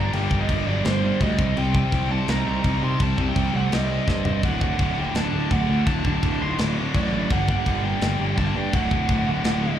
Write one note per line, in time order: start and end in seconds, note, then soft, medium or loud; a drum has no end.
0.00 0.10 G2 loud
0.00 0.11 D3 loud
0.00 0.13 G3 loud
0.00 0.11 D4 medium
0.00 0.11 A#5 medium
0.12 0.26 G1 medium
0.12 0.28 G2 medium
0.12 0.29 D3 loud
0.12 0.30 G3 loud
0.12 0.38 A#3 medium
0.12 0.38 G5 medium
0.12 crash medium
0.29 0.44 G1 medium
0.29 0.47 G2 medium
0.29 0.48 D3 medium
0.29 0.49 G3 loud
0.29 kick medium
0.40 0.65 G3 medium
0.40 0.67 D#5 loud
0.49 0.62 G1 medium
0.49 0.65 G2 medium
0.49 0.66 D3 medium
0.49 0.67 G3 loud
0.49 kick medium
0.49 crash medium
0.66 0.80 G1 medium
0.66 0.83 G2 medium
0.66 0.83 D3 medium
0.66 0.83 F#3 medium
0.66 0.85 G3 loud
0.66 0.85 D5 medium
0.84 1.11 G1 loud
0.84 1.01 G2 loud
0.84 1.01 D3 loud
0.84 1.17 G3 medium
0.84 1.03 G3 loud
0.84 1.18 C5 medium
0.84 snare loud
0.84 crash medium
1.02 1.19 G2 medium
1.02 1.20 D3 medium
1.02 1.21 G3 loud
1.20 1.34 D2 medium
1.20 1.37 G2 medium
1.20 1.37 D3 medium
1.20 1.54 G3 medium
1.20 1.38 G3 medium
1.20 1.58 D#5 medium
1.20 kick medium
1.20 crash medium
1.38 1.52 C2 medium
1.38 1.54 C3 medium
1.38 1.55 G3 loud
1.38 1.56 C4 loud
1.38 kick loud
1.55 1.83 C2 medium
1.55 1.73 C3 loud
1.55 1.74 G3 loud
1.55 1.74 C4 loud
1.55 1.73 C4 medium
1.55 1.75 G5 loud
1.55 crash medium
1.73 1.91 C3 medium
1.73 1.91 G3 medium
1.73 1.92 C4 loud
1.73 2.08 C4 medium
1.73 2.08 G5 loud
1.73 kick medium
1.91 2.19 C2 medium
1.91 2.08 C3 medium
1.91 2.09 G3 loud
1.91 2.10 C4 loud
1.91 kick medium
1.91 crash medium
2.09 2.26 C3 medium
2.09 2.27 G3 medium
2.09 2.28 C4 loud
2.09 2.27 C4 medium
2.09 2.29 A5 medium
2.27 2.41 C2 medium
2.27 2.44 C3 loud
2.27 2.45 G3 loud
2.27 2.45 C4 loud
2.27 2.79 D#4 medium
2.27 2.84 A#5 loud
2.27 snare loud
2.27 crash medium
2.45 2.59 C2 medium
2.45 2.61 C3 loud
2.45 2.62 G3 loud
2.45 2.62 C4 loud
2.62 2.77 C2 medium
2.62 2.80 C3 medium
2.62 2.81 G3 medium
2.62 2.81 C4 medium
2.62 kick medium
2.62 crash medium
2.81 2.98 C3 medium
2.81 2.95 C3 loud
2.81 2.98 G3 loud
2.81 2.99 C4 medium
2.81 3.02 D#4 medium
2.81 3.02 C6 medium
2.99 3.13 C2 medium
2.99 3.16 C3 medium
2.99 3.16 G3 loud
2.99 3.17 C4 loud
2.99 3.27 C4 medium
2.99 3.29 A5 loud
2.99 kick loud
2.99 crash medium
3.17 3.31 C2 loud
3.17 3.34 C3 medium
3.17 3.34 G3 medium
3.17 3.35 C4 loud
3.17 kick medium
3.28 3.53 A#3 medium
3.28 3.55 G5 loud
3.35 3.49 C2 medium
3.35 3.52 C3 medium
3.35 3.52 G3 loud
3.35 3.53 C4 loud
3.35 kick medium
3.35 crash medium
3.53 3.67 C2 medium
3.53 3.69 C3 medium
3.53 3.70 G3 medium
3.53 3.72 A3 medium
3.53 3.71 C4 loud
3.53 3.73 F#5 medium
3.70 3.98 C2 medium
3.70 3.88 C3 medium
3.70 3.88 G3 loud
3.70 4.06 G3 medium
3.70 3.89 C4 loud
3.70 4.09 D#5 medium
3.70 snare loud
3.70 crash medium
3.89 4.05 C3 medium
3.89 4.06 G3 medium
3.89 4.07 C4 medium
4.07 4.20 G2 medium
4.07 4.23 C3 medium
4.07 4.24 G3 medium
4.07 4.42 G3 medium
4.07 4.24 C4 medium
4.07 4.42 D#5 medium
4.07 kick medium
4.07 snare medium
4.24 4.39 G2 medium
4.24 4.41 C3 medium
4.24 4.42 G3 medium
4.24 4.42 C4 medium
4.24 floor tom medium
4.43 4.70 D1 loud
4.43 4.60 D2 loud
4.43 4.60 A2 loud
4.43 4.61 D3 loud
4.43 4.60 A3 medium
4.43 4.62 F#5 loud
4.43 kick loud
4.43 crash medium
4.60 4.77 D2 medium
4.60 4.77 A2 medium
4.60 4.79 D3 medium
4.60 4.95 A3 medium
4.60 4.99 F#5 medium
4.60 kick medium
4.78 5.05 D1 loud
4.78 4.96 D2 medium
4.78 4.96 A2 loud
4.78 4.97 D3 loud
4.78 kick medium
4.78 crash medium
4.96 5.12 D2 medium
4.96 5.13 A2 medium
4.96 5.14 D3 medium
4.96 5.17 A#3 medium
4.96 5.16 G5 loud
5.14 5.28 D1 medium
5.14 5.31 D2 loud
5.14 5.32 A2 loud
5.14 5.32 D3 loud
5.14 5.52 D4 medium
5.14 5.52 A5 loud
5.14 snare loud
5.14 crash medium
5.32 5.46 D1 medium
5.32 5.49 D2 medium
5.32 5.50 A2 medium
5.32 5.51 D3 loud
5.50 5.64 D1 loud
5.50 5.66 D2 medium
5.50 5.67 A2 medium
5.50 5.68 D3 loud
5.50 5.85 A3 medium
5.50 5.87 F#5 medium
5.50 kick medium
5.50 crash soft
5.68 5.84 D2 medium
5.68 5.82 D2 loud
5.68 5.84 A2 medium
5.68 5.85 D3 loud
5.85 6.00 D1 loud
5.85 6.02 D2 medium
5.85 6.02 A2 loud
5.85 6.03 D3 loud
5.85 6.04 A5 loud
5.85 kick loud
5.85 crash medium
5.89 6.05 D4 medium
6.03 6.18 D1 loud
6.03 6.20 D2 medium
6.03 6.20 A2 loud
6.03 6.21 D3 medium
6.03 6.42 A5 loud
6.03 kick medium
6.07 6.39 D4 medium
6.21 6.36 D1 medium
6.21 6.38 D2 medium
6.21 6.39 A2 medium
6.21 6.39 D3 loud
6.21 kick medium
6.21 crash medium
6.39 6.54 D1 medium
6.39 6.55 D2 medium
6.39 6.56 A2 medium
6.39 6.57 D3 loud
6.39 6.58 D#4 medium
6.39 6.58 C6 loud
6.57 6.85 D1 medium
6.57 6.75 D2 loud
6.57 6.76 A2 loud
6.57 6.76 D3 loud
6.57 6.92 F#4 medium
6.57 snare loud
6.57 crash medium
6.61 6.97 D6 loud
6.76 6.92 D2 loud
6.76 6.93 A2 medium
6.76 6.93 D3 loud
6.93 7.08 A1 medium
6.93 7.11 D2 medium
6.93 7.11 A2 medium
6.93 7.12 D3 medium
6.93 7.28 F#3 medium
6.93 7.32 D5 loud
6.93 kick medium
6.93 crash medium
7.12 7.25 A1 loud
7.12 7.29 D2 medium
7.12 7.29 A2 loud
7.12 7.29 D3 loud
7.30 7.56 G1 loud
7.30 7.46 G2 medium
7.30 7.47 D3 loud
7.30 7.47 G3 loud
7.30 7.47 A#3 medium
7.30 7.48 F#5 loud
7.30 kick loud
7.30 crash medium
7.47 7.64 G2 medium
7.47 7.65 D3 medium
7.47 7.65 G3 loud
7.47 7.82 A#3 medium
7.47 7.84 F#5 loud
7.47 kick medium
7.65 7.92 G1 medium
7.65 7.82 G2 loud
7.65 7.82 D3 loud
7.65 7.83 G3 loud
7.65 kick medium
7.65 crash medium
7.83 8.00 G2 medium
7.83 8.01 D3 loud
7.83 8.01 G3 loud
7.83 8.34 A#3 medium
7.83 8.34 G5 loud
8.01 8.15 G1 medium
8.01 8.19 G2 medium
8.01 8.19 D3 loud
8.01 8.20 G3 loud
8.01 snare loud
8.01 crash medium
8.19 8.32 G1 medium
8.19 8.36 G2 loud
8.19 8.36 D3 loud
8.19 8.37 G3 loud
8.37 8.51 G1 medium
8.37 8.54 G2 medium
8.37 8.54 D3 medium
8.37 8.55 G3 medium
8.37 8.54 D4 medium
8.37 8.57 A5 loud
8.37 kick medium
8.37 crash medium
8.54 8.72 G2 medium
8.54 8.68 G2 medium
8.54 8.72 D3 medium
8.54 8.73 G3 loud
8.54 8.72 A#3 medium
8.54 8.74 G5 loud
8.72 8.86 D1 loud
8.72 8.89 D2 loud
8.72 8.90 A2 loud
8.72 8.90 D3 medium
8.72 9.76 A3 medium
8.72 9.77 F#5 medium
8.72 kick loud
8.72 crash medium
8.90 9.04 D1 loud
8.90 9.07 D2 medium
8.90 9.08 A2 medium
8.90 9.09 D3 loud
8.90 kick medium
9.09 9.22 D1 medium
9.09 9.24 D2 loud
9.09 9.25 A2 loud
9.09 9.26 D3 loud
9.09 kick medium
9.09 crash medium
9.25 9.40 D1 medium
9.25 9.43 D2 medium
9.25 9.43 A2 medium
9.25 9.44 D3 medium
9.44 9.71 D1 medium
9.44 9.61 D2 loud
9.44 9.62 A2 loud
9.44 9.62 D3 loud
9.44 snare loud
9.44 crash medium
9.62 9.78 D2 medium
9.62 9.79 A2 loud
9.62 9.79 D3 loud